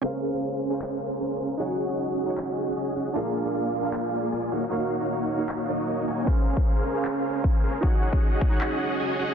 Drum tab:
CP |--------x-------|--------x-------|--------x-------|--------x-------|
BD |----------------|----------------|----------------|----------------|

CP |--------x-------|--------x-------|
BD |o--o--------o---|o--o--o---------|